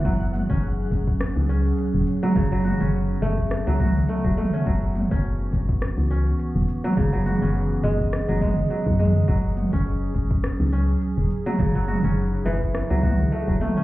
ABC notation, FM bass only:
X:1
M:4/4
L:1/16
Q:"Swing 16ths" 1/4=104
K:F#dor
V:1 name="FM bass" clef=bass
F,,,3 F,,,3 F,,,3 C,,3 z E,,, z2 | F,,,3 F,,,3 F,,,3 C,,3 z E,,, z2 | F,,,3 F,,,3 F,,,3 C,,3 z E,,, z2 | F,,,3 F,,,3 F,,,3 F,,,3 z F,,3 |
F,,,3 F,,,3 F,,,3 C,,3 z E,,, z2 | F,,,3 F,,,3 F,,,3 C,,3 z E,,, z2 |]